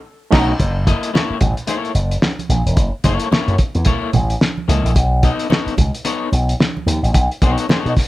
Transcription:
0.31 0.52 B1 loud
0.31 0.51 A3 loud
0.31 0.51 A3 medium
0.31 0.51 C#4 loud
0.31 0.51 D#4 loud
0.31 0.52 D#4 medium
0.31 0.48 D#4 loud
0.31 0.52 F#4 loud
0.31 0.52 F#4 medium
0.31 0.52 D#5 medium
0.31 kick loud
0.31 snare loud
0.31 crash medium
0.60 0.92 F#1 loud
0.60 kick medium
0.60 closed hi-hat medium
0.60 muted conga medium
0.87 1.09 A#3 medium
0.87 1.09 E4 medium
0.87 1.10 A4 medium
0.87 1.10 D#5 medium
0.87 kick medium
0.87 closed hi-hat medium
0.87 muted conga medium
1.03 closed hi-hat medium
1.14 1.36 A#3 medium
1.14 1.36 E4 medium
1.14 1.37 A4 medium
1.14 1.37 C#5 medium
1.14 snare loud
1.14 high conga medium
1.30 muted slap bass stroke soft
1.41 1.53 A1 medium
1.41 kick medium
1.41 closed hi-hat medium
1.41 low conga medium
1.57 closed hi-hat soft
1.67 1.90 A#3 medium
1.67 1.91 E4 medium
1.67 1.91 A4 medium
1.67 1.91 C#5 medium
1.67 closed hi-hat medium
1.67 muted conga soft
1.85 closed hi-hat soft
1.95 2.15 F#1 medium
1.95 closed hi-hat medium
2.11 closed hi-hat soft
2.22 snare loud
2.22 high conga medium
2.39 closed hi-hat soft
2.39 high conga soft
2.49 2.62 A#1 medium
2.49 closed hi-hat medium
2.49 high conga medium
2.66 2.77 E1 medium
2.66 closed hi-hat soft
2.77 2.89 F#1 medium
2.77 kick medium
2.77 closed hi-hat medium
2.77 muted conga soft
3.04 3.16 F#1 medium
3.04 3.27 A#3 medium
3.04 3.27 E4 medium
3.04 3.27 A4 medium
3.04 3.27 C#5 loud
3.04 kick loud
3.04 closed hi-hat medium
3.04 muted conga soft
3.20 closed hi-hat medium
3.31 3.54 A#3 medium
3.31 3.55 E4 medium
3.31 3.55 A4 medium
3.31 3.55 C#5 medium
3.31 muted slap bass stroke soft
3.31 snare loud
3.31 high conga medium
3.48 3.56 F#2 medium
3.48 closed hi-hat soft
3.58 kick medium
3.58 closed hi-hat medium
3.75 3.83 E2 medium
3.75 closed hi-hat soft
3.85 4.09 A#3 medium
3.85 4.09 E4 medium
3.85 4.09 A4 medium
3.85 4.09 C#5 medium
3.85 kick loud
3.85 closed hi-hat medium
3.85 muted conga soft
3.85 low conga medium
4.13 4.34 A1 medium
4.13 closed hi-hat medium
4.13 low conga medium
4.30 closed hi-hat soft
4.41 snare loud
4.41 high conga medium
4.58 high conga medium
4.68 4.80 C#2 medium
4.68 4.91 A#3 medium
4.68 4.91 E4 medium
4.68 4.91 A4 medium
4.68 4.91 D#5 medium
4.68 closed hi-hat medium
4.68 high conga medium
4.85 4.96 A#1 medium
4.85 closed hi-hat soft
4.95 5.29 B1 loud
4.95 kick medium
4.95 closed hi-hat medium
4.95 muted conga soft
5.23 5.46 B3 medium
5.23 5.46 D#4 medium
5.23 5.46 A4 medium
5.23 5.47 D#5 loud
5.23 kick medium
5.23 closed hi-hat medium
5.23 muted conga medium
5.39 closed hi-hat medium
5.50 5.73 B3 medium
5.50 5.73 D#4 medium
5.50 5.73 A4 medium
5.50 5.73 C#5 medium
5.50 snare loud
5.50 high conga medium
5.67 muted slap bass stroke soft
5.67 closed hi-hat soft
5.77 5.90 C#2 medium
5.77 kick medium
5.77 closed hi-hat medium
5.77 low conga medium
5.95 closed hi-hat soft
6.05 6.28 B3 medium
6.05 6.28 D#4 medium
6.05 6.28 A4 medium
6.05 6.28 C#5 medium
6.05 closed hi-hat medium
6.05 muted conga soft
6.32 6.53 B1 medium
6.32 closed hi-hat medium
6.32 muted conga soft
6.49 closed hi-hat soft
6.60 snare loud
6.60 high conga medium
6.77 high conga medium
6.86 6.99 D#2 medium
6.86 closed hi-hat medium
6.86 high conga medium
7.03 7.11 A1 medium
7.03 closed hi-hat soft
7.14 7.27 B1 medium
7.14 kick medium
7.14 closed hi-hat medium
7.14 muted conga soft
7.31 closed hi-hat soft
7.42 7.54 B1 medium
7.42 7.65 B3 medium
7.42 7.65 D#4 medium
7.42 7.65 A4 medium
7.42 7.65 C#5 medium
7.42 kick medium
7.42 closed hi-hat medium
7.42 muted conga medium
7.58 closed hi-hat medium
7.69 7.92 B3 medium
7.69 7.92 D#4 medium
7.69 7.93 A4 loud
7.69 7.93 C#5 medium
7.69 muted slap bass stroke soft
7.69 snare loud
7.69 high conga medium
7.86 7.94 B2 medium
7.86 closed hi-hat soft
7.96 kick medium
7.96 snare soft
7.96 open hi-hat medium

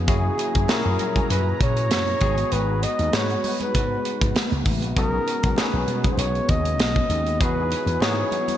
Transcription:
0.00 2.18 G#4 loud
0.08 0.29 F#2 loud
0.08 2.20 F#3 medium
0.08 0.60 A#3 medium
0.08 0.60 C#4 medium
0.08 2.19 E4 medium
0.08 0.60 E4 medium
0.08 0.60 F#4 medium
0.08 0.60 G#4 medium
0.08 0.71 G#4 medium
0.08 4.92 A#5 medium
0.08 kick loud
0.08 closed hi-hat medium
0.08 muted conga soft
0.38 closed hi-hat medium
0.38 muted conga soft
0.55 0.64 F#2 loud
0.55 kick medium
0.55 closed hi-hat medium
0.68 1.71 A#2 medium
0.68 1.71 C#4 medium
0.68 1.71 E4 medium
0.68 1.71 F#4 medium
0.68 1.72 G#4 medium
0.68 1.30 A#4 medium
0.68 snare loud
0.68 closed hi-hat medium
0.68 high conga medium
0.85 0.95 F#2 loud
0.99 1.20 F#3 loud
0.99 closed hi-hat medium
0.99 low conga medium
1.16 kick medium
1.16 closed hi-hat soft
1.16 low conga medium
1.30 1.51 F#2 loud
1.30 1.58 B4 loud
1.30 closed hi-hat medium
1.30 muted conga soft
1.61 1.91 A#2 medium
1.61 2.54 C#5 loud
1.61 kick medium
1.61 closed hi-hat medium
1.61 muted conga soft
1.77 closed hi-hat medium
1.91 2.12 F#2 medium
1.91 snare loud
1.91 closed hi-hat loud
1.91 high conga medium
2.07 closed hi-hat soft
2.07 high conga medium
2.21 2.42 G#1 medium
2.21 2.99 G#3 medium
2.21 4.94 G#3 medium
2.21 2.99 B3 medium
2.21 2.99 D#4 medium
2.21 2.99 F#4 medium
2.21 4.94 F#4 medium
2.21 2.99 G#4 medium
2.21 4.94 B4 medium
2.21 kick loud
2.21 closed hi-hat medium
2.38 closed hi-hat medium
2.52 2.84 G#1 loud
2.52 2.85 B4 loud
2.52 closed hi-hat medium
2.52 muted conga soft
2.82 3.18 D#5 loud
2.82 closed hi-hat medium
2.82 muted conga soft
2.99 3.09 D#2 loud
2.99 closed hi-hat soft
3.13 3.34 G#2 medium
3.13 4.16 G#3 medium
3.13 4.16 B3 medium
3.13 4.16 D#4 medium
3.13 4.16 F#4 medium
3.13 4.16 B4 medium
3.13 3.62 C#5 medium
3.13 snare loud
3.13 closed hi-hat medium
3.13 high conga medium
3.30 closed hi-hat soft
3.44 open hi-hat medium
3.44 low conga medium
3.60 4.49 B4 medium
3.60 closed hi-hat medium
3.60 low conga medium
3.74 3.95 G#2 loud
3.74 kick medium
3.74 closed hi-hat loud
3.74 muted conga soft
4.05 closed hi-hat medium
4.05 muted conga soft
4.21 4.31 G#2 medium
4.21 kick loud
4.21 closed hi-hat medium
4.35 snare loud
4.35 closed hi-hat medium
4.35 high conga medium
4.51 4.61 C#2 medium
4.51 closed hi-hat soft
4.51 high conga medium
4.65 4.82 A1 medium
4.65 kick loud
4.65 open hi-hat medium
4.82 4.92 A#1 medium
4.82 closed hi-hat medium
4.96 5.17 B1 loud
4.96 7.38 G#3 loud
4.96 8.57 B3 medium
4.96 5.48 B3 medium
4.96 8.57 C#4 medium
4.96 5.48 C#4 medium
4.96 5.48 D#4 medium
4.96 5.49 F#4 medium
4.96 5.49 G#4 medium
4.96 5.59 A#4 loud
4.96 kick loud
4.96 closed hi-hat medium
4.96 muted conga soft
5.27 closed hi-hat medium
5.27 muted conga soft
5.43 5.53 B1 loud
5.43 kick medium
5.43 closed hi-hat medium
5.56 6.59 B3 medium
5.56 6.59 C#4 medium
5.56 6.60 D#4 medium
5.56 6.60 F#4 medium
5.56 6.60 G#4 medium
5.56 6.14 B4 medium
5.56 snare loud
5.56 closed hi-hat medium
5.56 high conga medium
5.73 5.83 B1 medium
5.87 6.09 B2 loud
5.87 closed hi-hat medium
5.87 low conga medium
6.04 kick medium
6.04 closed hi-hat soft
6.04 low conga medium
6.13 6.21 C5 medium
6.17 6.39 B1 loud
6.17 6.51 C#5 loud
6.17 closed hi-hat loud
6.17 muted conga soft
6.35 closed hi-hat soft
6.49 6.79 D#2 medium
6.49 7.43 D#5 loud
6.49 kick medium
6.49 closed hi-hat medium
6.49 muted conga soft
6.65 closed hi-hat medium
6.78 7.00 B1 medium
6.78 snare loud
6.78 closed hi-hat medium
6.78 high conga medium
6.95 kick medium
6.95 high conga medium
7.09 7.40 D#2 medium
7.09 closed hi-hat medium
7.26 closed hi-hat medium
7.40 7.73 E2 loud
7.40 8.57 E3 loud
7.40 7.92 B3 medium
7.40 7.92 D#4 medium
7.40 7.92 E4 medium
7.40 7.92 F#4 medium
7.40 8.57 G#4 loud
7.40 7.92 G#4 medium
7.40 8.03 B4 loud
7.40 kick loud
7.40 closed hi-hat medium
7.40 muted conga soft
7.71 closed hi-hat medium
7.71 muted conga soft
7.86 7.96 E2 loud
7.86 closed hi-hat soft
8.00 8.22 G#2 medium
8.00 8.57 B3 medium
8.00 8.57 D#4 medium
8.00 8.57 E4 medium
8.00 8.57 F#4 medium
8.00 8.57 G#4 medium
8.00 8.57 C#5 loud
8.00 snare loud
8.00 closed hi-hat medium
8.00 high conga medium
8.31 closed hi-hat medium
8.31 low conga medium
8.48 closed hi-hat medium
8.48 low conga medium

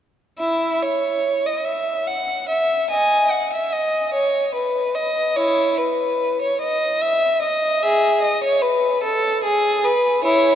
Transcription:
0.39 0.79 E4 medium
0.39 0.79 E5 medium
0.82 1.45 C#5 medium
1.46 1.67 D#5 medium
1.65 2.07 E5 medium
2.07 2.49 F#5 medium
2.49 2.90 E5 medium
2.90 3.29 D#5 medium
2.90 3.31 G#5 medium
3.31 3.52 F#5 medium
3.53 3.73 E5 medium
3.72 4.14 D#5 medium
4.14 4.54 C#5 medium
4.55 4.95 B4 medium
4.95 5.37 D#5 medium
5.36 5.75 E4 medium
5.36 5.78 C#5 medium
5.78 6.40 B4 medium
6.41 6.61 C#5 medium
6.61 7.01 D#5 medium
7.02 7.42 E5 medium
7.42 7.82 D#5 medium
7.83 8.20 G#4 medium
7.83 8.23 E5 medium
8.22 8.42 D#5 medium
8.44 8.63 C#5 medium
8.62 9.03 B4 medium
9.03 9.43 A4 medium
9.44 9.83 G#4 medium
9.84 10.24 B4 medium
10.24 10.55 E4 medium
10.24 10.55 C#5 medium

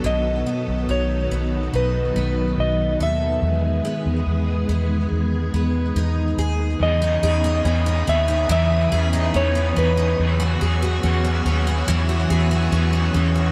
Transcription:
0.00 0.41 B1 medium
0.00 3.39 F#3 medium
0.00 0.46 B3 medium
0.00 3.38 B3 medium
0.00 0.88 F#4 medium
0.00 0.49 A4 medium
0.00 3.38 A4 medium
0.04 3.42 B2 medium
0.04 6.76 D#3 medium
0.04 0.92 D#5 medium
0.46 1.31 B3 medium
0.68 0.86 B1 medium
0.89 1.26 B1 loud
0.89 1.73 D#4 medium
0.89 1.75 C#5 medium
1.31 1.68 B1 medium
1.31 2.15 B3 medium
1.73 2.11 B1 medium
1.73 3.03 D#4 medium
1.73 2.55 B4 medium
2.16 2.53 B1 medium
2.16 3.84 B3 medium
2.58 2.95 B1 medium
2.58 3.02 D#5 loud
3.00 3.37 D#2 medium
3.00 3.51 A4 medium
3.00 5.93 E5 medium
3.42 3.79 E2 medium
3.42 6.77 G#3 medium
3.42 6.77 B3 medium
3.42 6.77 G#4 medium
3.85 4.69 B3 medium
4.06 4.24 E2 medium
4.27 4.64 E2 medium
4.69 5.06 E2 medium
4.69 5.53 B3 medium
5.11 5.48 E2 medium
5.54 5.91 E2 medium
5.54 7.65 B3 medium
5.96 6.33 E2 medium
5.96 7.01 D#4 medium
6.38 6.75 D#2 medium
6.38 7.23 G#4 medium
6.79 7.17 E2 medium
6.79 7.23 C#3 medium
6.79 7.22 E3 medium
6.79 7.23 B3 medium
6.79 7.23 C#4 medium
6.79 7.22 D#4 medium
6.79 7.20 G#4 medium
6.79 13.52 C#5 medium
6.79 8.09 D#5 loud
6.79 10.15 G#5 medium
6.79 10.15 B5 medium
6.79 10.15 D#6 medium
7.02 7.43 D#4 medium
7.21 7.60 E2 medium
7.21 7.65 B3 soft
7.21 7.65 D#4 soft
7.21 7.64 G#4 medium
7.21 8.91 G#4 medium
7.27 7.62 C#4 soft
7.44 7.85 D#4 medium
7.64 8.02 E2 loud
7.64 8.07 B3 medium
7.64 8.08 B3 medium
7.64 8.07 C#4 medium
7.68 8.09 D#4 medium
7.68 8.05 G#4 medium
7.86 8.27 D#4 medium
8.07 8.45 D#2 medium
8.07 9.34 B3 medium
8.07 8.50 B3 soft
8.07 8.49 G#4 medium
8.07 8.51 E5 loud
8.12 8.50 C#4 soft
8.28 8.70 D#4 medium
8.49 8.86 E2 loud
8.49 8.92 C#3 medium
8.49 8.92 E3 medium
8.49 10.43 E3 medium
8.49 8.93 B3 medium
8.49 8.92 C#4 medium
8.49 8.90 G#4 medium
8.49 9.38 E5 loud
8.91 9.29 E2 loud
8.91 9.34 B3 medium
8.91 9.34 G#4 medium
8.91 10.43 G#4 medium
8.96 9.32 C#4 soft
9.13 9.54 D#4 medium
9.33 9.71 E2 loud
9.33 9.76 B3 medium
9.33 9.77 B3 medium
9.33 9.76 C#4 medium
9.33 9.78 C#5 loud
9.37 9.76 D#4 medium
9.37 9.74 G#4 medium
9.55 9.96 D#4 medium
9.75 10.14 E2 loud
9.75 11.03 B3 medium
9.75 10.20 B3 medium
9.75 10.19 D#4 medium
9.75 10.18 G#4 medium
9.75 12.27 B4 medium
9.81 10.20 C#4 soft
9.97 10.27 D#4 medium
10.18 10.56 E2 loud
10.18 10.61 C#3 medium
10.18 10.60 E3 medium
10.18 10.61 F#3 medium
10.18 10.62 B3 loud
10.18 10.61 B4 medium
10.18 13.52 F#5 medium
10.18 13.52 G#5 medium
10.18 13.52 E6 medium
10.22 10.59 G#4 medium
10.40 10.81 F#4 medium
10.60 10.98 E2 loud
10.60 11.03 B3 soft
10.60 11.03 G#4 medium
10.60 12.30 G#4 medium
10.60 11.04 B4 medium
10.66 11.01 F#3 soft
10.82 11.23 F#4 medium
11.02 11.40 E2 loud
11.02 11.45 F#3 medium
11.02 11.46 B3 medium
11.02 11.45 C#4 medium
11.02 11.46 B4 medium
11.07 11.43 G#4 medium
11.24 11.66 F#4 medium
11.45 11.83 D#2 medium
11.45 11.88 B3 soft
11.45 12.72 C#4 medium
11.45 11.87 G#4 medium
11.45 11.88 B4 medium
11.50 11.87 F#3 medium
11.67 12.08 F#4 medium
11.87 12.25 E2 loud
11.87 12.30 C#3 medium
11.87 12.29 E3 medium
11.87 13.52 E3 medium
11.87 12.30 F#3 loud
11.87 12.30 B3 medium
11.87 12.30 B4 loud
11.91 12.27 G#4 medium
12.09 12.50 F#4 medium
12.29 12.67 E2 loud
12.29 12.71 G#4 medium
12.29 13.52 G#4 medium
12.29 12.73 B4 medium
12.33 12.70 F#3 soft
12.33 12.72 B3 medium
12.51 12.92 F#4 medium
12.71 13.09 E2 loud
12.71 13.14 F#3 medium
12.71 13.15 B3 medium
12.71 13.14 C#4 medium
12.71 13.14 B4 medium
12.77 13.12 G#4 medium
12.93 13.34 F#4 medium
13.13 13.52 E2 loud
13.13 13.52 C#4 medium
13.13 13.52 G#4 medium
13.13 13.52 B4 medium
13.18 13.52 F#3 medium
13.18 13.52 B3 medium
13.35 13.52 F#4 medium

